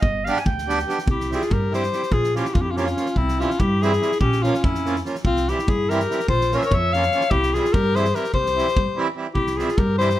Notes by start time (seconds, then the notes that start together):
0.01 G1 D#5, kick
0.24 G3 B3 F5, snare
0.28 D4 G4
0.36 G#5, snare
0.45 D2 G5, kick
0.58 snare
0.67 G3 B3 D4 G4, snare
0.78 snare
0.87 G3 B3 D4 G4, snare
0.98 snare
1.06 C2, kick
1.10 E4 G4
1.20 snare
1.30 G3 C4 E4 G4 G#4, snare
1.35 F4
1.42 snare
1.50 G2 G4 A#4, kick
1.71 G3 C4 E4 G4 C5, snare
1.83 snare
1.91 G3 C4 E4 G4, snare
2.03 snare
2.11 A#1 F4 G#4, kick
2.24 snare
2.34 F3 A#3 C#4 E4 F4 G4, snare
2.45 snare
2.54 F2 C#4 F4, kick
2.61 E4 G4
2.71 C#4 F4
2.76 F3 A#3 C#4 E4 F4 G4, snare
2.86 C#4 F4, snare
2.96 F3 A#3 C#4 F4, snare
3.06 snare
3.16 C2 C4 E4, kick
3.28 snare
3.37 E3 G3 C4 C#4 E4 F4, snare
3.50 snare
3.58 G2 E4 G4, kick
3.79 E3 G3 C4 E4 G#4, snare
3.92 snare
4.00 E3 G3 C4 E4, snare
4.12 snare
4.20 A#1 C#4 G4, kick
4.32 snare
4.42 F3 A#3 C#4 F4, snare
4.54 snare
4.63 F2 C#4 E4, kick
4.75 snare
4.85 F3 A#3 C#4 F4, snare
4.96 snare
5.04 F3 A#3 C#4 F4, snare
5.15 snare
5.24 C2 C4 F4, kick
5.36 snare
5.48 E3 G3 C4 E4 G4, snare
5.59 snare
5.67 G2 E4 G#4, kick
5.89 E3 G3 C4 E4 G4 A#4, snare
6.00 snare
6.09 E3 G3 C4 E4, snare
6.20 snare
6.28 A#1 F4 C5, kick
6.41 snare
6.52 F3 A#3 C#4 F4 A#4 C#5, snare
6.57 C5 E5
6.62 A#4, snare
6.66 C#5
6.71 F2 C#5 E5, kick
6.93 F3 A#3 C#4 F4 C#5 F5, snare
7.02 snare
7.12 F3 A#3 C#4 F4, snare
7.21 snare
7.30 C2 E4 G4, kick
7.43 snare
7.53 E3 G3 C4 E4 F4 G#4, snare
7.65 snare
7.73 G2 G4 A#4, kick
7.95 E3 G3 C4 E4 G#4 C5, snare
8.05 snare
8.13 E3 G3 C4 E4 G4 A#4, snare
8.24 snare
8.33 C2 G4 C5, kick
8.46 snare
8.55 E3 G3 C4 E4, snare
8.68 snare
8.76 G2, kick
8.95 E3 G3 C4 E4
9.15 E3 G3 C4 E4
9.34 C2 E4 G4, kick
9.47 snare
9.57 C3 E3 G3 C4 E4 F4 G#4, snare
9.69 snare
9.78 G2 G4 A#4, kick
9.98 C3 E3 G3 C4 E4 G4 C5, snare
10.10 snare
10.14 C3 E3 G3 C4 E4